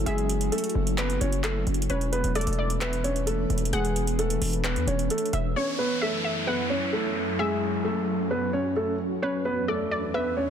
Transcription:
0.00 1.86 F#3 medium
0.00 1.86 C#4 medium
0.00 1.86 E4 medium
0.00 1.86 F#4 loud
0.06 0.50 F#1 loud
0.06 0.50 G#3 medium
0.06 0.50 G#4 loud
0.06 1.86 E5 loud
0.06 closed hi-hat medium
0.18 closed hi-hat soft
0.29 closed hi-hat medium
0.41 closed hi-hat medium
0.52 0.96 A3 medium
0.52 0.95 A4 medium
0.52 closed hi-hat medium
0.58 closed hi-hat medium
0.64 closed hi-hat medium
0.69 closed hi-hat soft
0.75 1.19 F#1 loud
0.87 closed hi-hat medium
0.98 1.17 B3 medium
0.98 1.16 B4 medium
0.98 clap loud
0.98 closed hi-hat medium
1.10 closed hi-hat medium
1.21 1.65 F#1 loud
1.21 1.40 C#4 medium
1.21 1.39 C#5 medium
1.21 closed hi-hat medium
1.32 closed hi-hat medium
1.44 1.63 A3 medium
1.44 1.62 A4 medium
1.44 clap medium
1.44 closed hi-hat medium
1.67 1.89 F#1 loud
1.67 closed hi-hat soft
1.74 closed hi-hat medium
1.82 closed hi-hat medium
1.90 2.23 E1 loud
1.90 5.52 E3 medium
1.90 5.52 B3 medium
1.90 2.08 C#4 medium
1.90 5.52 D4 medium
1.90 5.52 B4 loud
1.90 2.33 B4 medium
1.90 2.08 C#5 loud
1.90 closed hi-hat medium
2.01 closed hi-hat soft
2.12 2.31 B3 medium
2.12 2.31 B4 medium
2.12 closed hi-hat loud
2.24 2.46 E1 loud
2.24 closed hi-hat medium
2.35 2.79 A3 medium
2.35 2.78 A4 medium
2.35 2.57 D5 medium
2.35 closed hi-hat medium
2.41 closed hi-hat medium
2.47 3.46 E1 loud
2.47 closed hi-hat medium
2.53 closed hi-hat soft
2.59 2.80 D5 medium
2.70 closed hi-hat medium
2.81 3.00 B3 medium
2.81 3.00 B4 medium
2.81 3.24 E5 medium
2.81 clap loud
2.81 closed hi-hat loud
2.93 closed hi-hat medium
3.04 3.23 C#4 medium
3.04 3.22 C#5 medium
3.04 closed hi-hat medium
3.16 closed hi-hat soft
3.27 3.70 A3 medium
3.27 3.70 A4 medium
3.27 closed hi-hat medium
3.50 3.72 E1 loud
3.50 closed hi-hat soft
3.58 closed hi-hat medium
3.65 closed hi-hat medium
3.73 4.39 E1 loud
3.73 4.16 G#3 medium
3.73 4.16 G#4 loud
3.73 5.29 F#5 loud
3.73 closed hi-hat medium
3.85 closed hi-hat soft
3.96 closed hi-hat medium
4.07 closed hi-hat medium
4.19 4.62 A3 medium
4.19 4.62 A4 medium
4.19 closed hi-hat medium
4.30 closed hi-hat medium
4.41 4.77 E1 loud
4.41 open hi-hat medium
4.53 closed hi-hat medium
4.64 4.83 B3 medium
4.64 4.83 B4 medium
4.64 clap loud
4.64 closed hi-hat medium
4.76 4.87 E2 loud
4.76 closed hi-hat medium
4.87 5.09 E1 loud
4.87 5.06 C#4 medium
4.87 5.06 C#5 medium
4.87 closed hi-hat medium
4.99 closed hi-hat soft
5.10 5.29 A3 medium
5.10 5.29 A4 medium
5.10 closed hi-hat medium
5.18 closed hi-hat medium
5.26 closed hi-hat soft
5.33 5.55 E1 loud
5.33 5.55 E5 medium
5.33 closed hi-hat medium
5.56 9.19 F#2 medium
5.56 9.19 F#3 medium
5.56 10.50 C#4 medium
5.56 5.75 C#4 medium
5.56 7.37 E4 medium
5.56 5.99 C#5 loud
5.56 5.74 C#5 medium
5.56 downlifter medium
5.79 5.98 B3 medium
5.79 5.97 B4 medium
6.01 6.46 A3 medium
6.01 6.45 A4 medium
6.01 6.23 E5 medium
6.24 6.46 E5 medium
6.47 6.66 B3 medium
6.47 6.66 B4 medium
6.47 6.91 F#5 medium
6.70 6.89 C#4 medium
6.70 6.88 C#5 medium
6.93 7.37 A3 medium
6.93 7.36 A4 medium
7.39 7.83 G#3 medium
7.39 9.21 F#4 medium
7.39 7.82 G#4 loud
7.39 9.18 E5 loud
7.84 8.28 A3 medium
7.84 8.28 A4 medium
8.31 8.50 B3 medium
8.31 8.49 B4 medium
8.53 8.72 C#4 medium
8.53 8.72 C#5 medium
8.76 8.95 A3 medium
8.76 8.95 A4 medium
9.22 10.50 E2 medium
9.22 10.50 E3 medium
9.22 9.41 C#4 medium
9.22 10.50 D4 medium
9.22 9.66 B4 medium
9.22 9.41 C#5 medium
9.22 riser medium
9.45 9.64 B3 medium
9.45 9.64 B4 medium
9.68 10.12 A3 medium
9.68 10.11 A4 medium
9.68 9.90 D5 medium
9.91 10.13 D5 medium
10.14 10.33 B3 medium
10.14 10.32 B4 medium
10.14 10.50 E5 medium
10.37 10.50 C#4 medium
10.37 10.50 C#5 medium

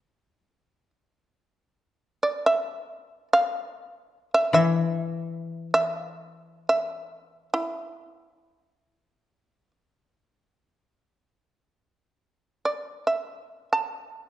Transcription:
0.00 0.90 B4 medium
2.23 2.44 D5 medium
2.46 2.98 E5 medium
2.98 3.28 D5 medium
3.33 3.89 F5 medium
3.89 4.30 E5 medium
4.34 4.53 E5 medium
4.53 7.49 E3 soft
4.53 5.70 E5 medium
5.74 5.96 E5 medium
5.96 6.66 F5 medium
6.69 7.49 E5 medium
7.54 8.66 E4 medium
8.66 8.93 D#4 medium
8.93 9.71 D4 medium
12.65 13.04 D5 medium
13.07 13.69 E5 medium
13.73 14.29 A5 medium

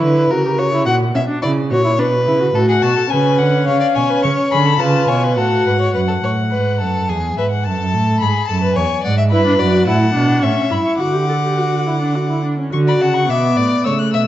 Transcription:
0.00 0.30 D3 medium
0.00 0.33 E4 medium
0.00 0.32 B4 medium
0.31 0.88 C#3 medium
0.31 0.44 F#4 medium
0.31 0.60 A#4 medium
0.45 0.51 G4 medium
0.58 0.64 F#4 medium
0.58 0.85 C#5 medium
0.73 0.86 E4 medium
0.86 1.14 A#2 medium
0.86 0.94 F#4 medium
0.86 0.94 F#5 medium
1.14 1.23 B2 medium
1.14 1.20 C#4 medium
1.14 1.23 E5 medium
1.28 1.42 D4 medium
1.42 1.73 C#3 medium
1.42 1.51 E4 medium
1.42 1.50 D5 medium
1.71 2.01 A#2 medium
1.71 1.84 F#4 medium
1.71 2.01 C#5 medium
1.84 1.90 E4 medium
1.98 2.29 B2 medium
1.98 2.06 D4 medium
1.98 2.57 B4 medium
2.27 2.54 C#3 medium
2.27 2.40 E4 medium
2.40 2.46 F#4 medium
2.54 2.82 A2 medium
2.54 3.10 F#4 medium
2.54 2.68 A4 medium
2.69 2.74 G#4 medium
2.69 2.84 F#5 medium
2.82 2.90 B2 medium
2.82 2.96 F#4 medium
2.82 3.12 A5 medium
2.96 3.02 A4 medium
3.09 3.41 C#3 medium
3.09 4.77 C#4 medium
3.09 3.66 B4 medium
3.09 3.40 G#5 medium
3.39 3.67 D3 medium
3.39 3.67 F#5 medium
3.66 3.76 C#3 medium
3.66 3.80 C#5 medium
3.66 3.97 F5 medium
3.80 3.86 D5 medium
3.95 4.05 B2 medium
3.95 4.11 C#5 medium
3.95 4.23 G#5 medium
4.10 4.25 B4 medium
4.23 4.32 C#3 medium
4.23 4.53 C#5 medium
4.23 4.31 C#6 medium
4.52 4.80 D3 medium
4.52 4.67 G#4 medium
4.52 4.81 B5 medium
4.66 4.82 A4 medium
4.80 5.09 C#3 medium
4.80 5.36 F4 medium
4.80 5.10 B4 medium
4.80 5.09 A5 medium
5.08 5.39 B2 medium
5.08 5.25 C#5 medium
5.08 5.36 G#5 medium
5.23 5.39 B4 medium
5.37 5.66 A2 medium
5.37 5.94 F#4 medium
5.37 5.66 A4 medium
5.37 5.93 F#5 medium
5.66 5.94 G#2 medium
5.66 5.72 B4 medium
5.79 5.94 C#5 medium
5.94 6.22 F#2 medium
5.94 6.00 B4 medium
5.94 7.05 F#5 medium
6.08 6.14 A4 medium
6.23 6.54 A2 medium
6.23 6.31 C#5 medium
6.51 6.82 G#2 medium
6.51 6.80 B4 medium
6.80 7.10 F#2 medium
6.80 7.11 A4 medium
7.09 7.37 E2 medium
7.09 7.37 G#4 medium
7.09 7.17 G#5 medium
7.37 7.67 G#2 medium
7.37 7.46 B4 medium
7.37 7.49 E5 medium
7.50 7.66 F#5 medium
7.64 7.79 F#2 medium
7.64 8.23 A4 medium
7.64 8.20 A5 medium
7.80 7.95 F#2 medium
7.94 8.22 A2 medium
8.20 8.30 G#2 medium
8.20 8.50 G#4 medium
8.20 8.47 B5 medium
8.48 8.76 F#2 medium
8.48 8.62 A4 medium
8.48 8.75 A5 medium
8.62 8.77 B4 medium
8.76 8.85 E2 medium
8.76 9.02 C#5 medium
8.76 9.03 G#5 medium
9.03 9.34 G#2 medium
9.03 9.17 D5 medium
9.03 9.13 F#5 medium
9.18 9.23 E5 medium
9.31 9.59 G2 medium
9.31 9.45 E4 medium
9.31 9.61 B4 medium
9.31 9.86 B5 medium
9.46 9.59 D4 medium
9.59 9.86 F#2 medium
9.59 9.89 F#4 medium
9.59 9.87 D5 medium
9.86 10.14 A2 medium
9.86 10.14 E4 medium
9.86 10.44 F#5 medium
9.86 10.41 A5 medium
10.15 10.42 B2 medium
10.15 10.44 D4 medium
10.42 10.50 A2 medium
10.42 10.72 C#4 medium
10.42 10.99 E5 medium
10.42 10.70 C#6 medium
10.70 10.79 G2 medium
10.70 11.01 E4 medium
10.70 10.77 B5 medium
10.84 10.98 C#6 medium
10.99 12.40 D3 medium
10.99 11.15 F#4 medium
10.99 12.41 F#5 medium
10.99 12.40 D6 medium
11.14 11.28 G4 medium
11.29 11.35 A4 medium
11.43 11.59 G4 medium
11.58 11.88 F#4 medium
11.86 12.01 E4 medium
12.01 12.17 D4 medium
12.15 12.29 F#4 soft
12.30 12.44 E4 medium
12.45 12.59 D4 soft
12.59 12.73 C#4 medium
12.72 12.98 D3 medium
12.72 13.26 F#4 medium
12.72 12.78 C#6 medium
12.87 13.03 D5 medium
12.87 12.93 B5 medium
13.00 13.30 C#3 medium
13.00 13.31 F#5 medium
13.00 13.16 A5 medium
13.14 13.30 C#6 medium
13.29 13.56 B2 medium
13.29 13.87 B3 medium
13.29 13.58 E5 medium
13.29 13.86 D6 medium
13.57 13.65 A2 medium
13.57 13.85 D5 medium
13.84 14.15 C#3 medium
13.84 14.27 A3 medium
13.84 13.94 C#5 medium
13.84 14.01 E6 medium
13.99 14.13 F#6 medium
14.13 14.27 B2 medium
14.13 14.22 E5 medium
14.13 14.27 E6 medium

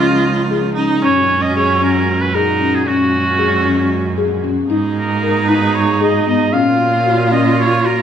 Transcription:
0.00 1.06 C#2 medium
0.00 1.01 C#3 medium
0.00 1.00 F3 medium
0.00 0.37 C#4 medium
0.00 1.01 D#4 medium
0.00 0.74 F4 loud
0.00 0.50 D#5 medium
0.51 0.70 G#4 medium
0.75 0.96 C#4 medium
0.75 1.04 D#4 loud
1.01 2.86 F#2 medium
1.01 4.65 A#2 medium
1.01 2.84 G#3 medium
1.01 2.37 C#4 medium
1.01 1.42 C#4 medium
1.01 4.65 F#4 medium
1.01 1.43 C#5 loud
1.42 1.55 D#5 loud
1.56 1.75 G#4 medium
1.56 1.80 C#5 loud
1.82 2.20 C#4 medium
1.82 2.23 A#4 medium
2.21 2.36 B4 medium
2.35 2.87 D#4 medium
2.35 2.54 G#4 medium
2.35 2.76 A#4 loud
2.61 2.80 C#4 medium
2.75 2.89 G#4 medium
2.86 4.66 F#2 medium
2.86 4.68 G#3 medium
2.86 3.25 C#4 medium
2.86 4.40 C#4 medium
2.86 4.18 F#4 loud
3.39 3.58 G#4 medium
3.65 4.04 C#4 medium
4.18 4.37 G#4 medium
4.44 4.63 C#4 medium
4.69 6.55 G#2 medium
4.69 6.51 B2 medium
4.69 6.51 A#3 medium
4.69 6.55 D#4 medium
4.69 5.08 D#4 medium
4.69 6.51 G#4 medium
4.96 5.50 A#4 medium
5.23 5.42 A#4 medium
5.48 5.87 D#4 medium
5.48 5.76 B4 medium
5.74 6.00 C#5 medium
6.01 6.20 G#4 medium
6.01 6.25 D#5 medium
6.27 6.46 B3 medium
6.27 6.54 D#5 loud
6.52 8.02 A#2 medium
6.52 8.02 F#3 medium
6.52 8.02 A#3 medium
6.52 6.91 C#4 loud
6.52 8.02 F4 medium
6.52 8.02 F4 loud
6.52 7.31 F5 loud
7.05 7.24 F#4 medium
7.31 7.69 C#4 medium
7.31 7.56 D#5 medium
7.59 7.87 C#5 medium
7.84 8.02 F#4 medium
7.84 8.02 A#4 medium

